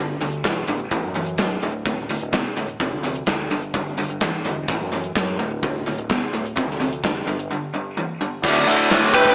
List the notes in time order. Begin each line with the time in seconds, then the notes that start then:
Already playing: G1 G2 D3
0.21 D2 G2 D3, closed hi-hat
0.33 closed hi-hat
0.44 B1 G2 E3, kick, snare, closed hi-hat
0.67 A1 G2 D3, closed hi-hat
0.91 A1 A2 E3, kick, closed hi-hat
1.03 F#2
1.14 A2 E3, closed hi-hat
1.26 closed hi-hat
1.38 E1 A2 F#3, kick, snare, closed hi-hat
1.62 D1 D2 A2, closed hi-hat
1.85 D2 A2, kick, closed hi-hat
2.09 D2 A2, closed hi-hat
2.21 D1, closed hi-hat
2.33 D2 B2, kick, snare, closed hi-hat
2.56 E1 D2 A2, closed hi-hat
2.68 closed hi-hat
2.80 F1 F2 C3, kick, closed hi-hat
2.92 D2
3.03 F2 C3, closed hi-hat
3.15 closed hi-hat
3.26 D2 F2 D3, kick, snare, closed hi-hat
3.50 G1 G2 D3, closed hi-hat
3.62 closed hi-hat
3.74 G2 D3, kick, closed hi-hat
3.97 G2 D3, closed hi-hat
4.09 G1, closed hi-hat
4.20 G2 E3, kick, snare, closed hi-hat
4.45 E1 G2 D3, closed hi-hat
4.68 A1 A2 E3, kick, closed hi-hat
4.81 F#2
4.92 A2 E3, closed hi-hat
5.04 closed hi-hat
5.15 F#2 A2 F#3, kick, snare, closed hi-hat
5.39 D1 D2 A2, closed hi-hat
5.63 D2 A2, kick, closed hi-hat
5.86 D2 A2, closed hi-hat
5.98 D1, closed hi-hat
6.09 D2 B2, kick, snare, closed hi-hat
6.33 D1 D2 A2, closed hi-hat
6.46 closed hi-hat
6.56 F1 F2 C3, kick, closed hi-hat
6.68 D2, snare
6.80 F2 C3, closed hi-hat
6.93 closed hi-hat
7.03 F1 F2 D3, kick, snare, closed hi-hat
7.26 G1 G2 D3, closed hi-hat
7.39 closed hi-hat
7.51 G2 D3
7.74 G2 D3
7.97 G2 E3
8.21 G2 D3
8.42 D1 D2 A2 D3 E4 F#4 D5, kick, crash
8.66 D2 A2 D3 E4 F#4 D5, closed hi-hat
8.90 D1 D2 A2 D3, snare, closed hi-hat
9.14 D2 A2 D3 G4 B4, kick, closed hi-hat
9.25 A1, kick